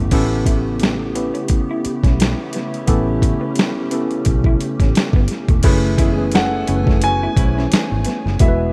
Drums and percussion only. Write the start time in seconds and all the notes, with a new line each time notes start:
0.11 kick, closed hi-hat, crash
0.46 kick, closed hi-hat
0.80 snare, closed hi-hat
1.15 closed hi-hat
1.35 closed hi-hat
1.48 kick, closed hi-hat
1.85 closed hi-hat
2.04 kick, snare, closed hi-hat
2.20 snare, closed hi-hat
2.53 snare, closed hi-hat
2.74 closed hi-hat
2.87 kick, closed hi-hat
3.22 kick, closed hi-hat
3.55 snare, closed hi-hat
3.91 closed hi-hat
4.11 closed hi-hat
4.25 kick, closed hi-hat
4.44 kick
4.61 closed hi-hat
4.80 kick, snare, closed hi-hat
4.95 snare, closed hi-hat
5.13 kick
5.28 snare, closed hi-hat
5.49 kick, closed hi-hat
5.63 kick, closed hi-hat, crash
5.98 kick, closed hi-hat
6.32 snare, closed hi-hat
6.67 closed hi-hat
6.87 kick, snare
7.01 closed hi-hat
7.37 kick, closed hi-hat
7.59 snare
7.72 snare, closed hi-hat
8.05 snare, closed hi-hat
8.27 snare
8.39 kick, closed hi-hat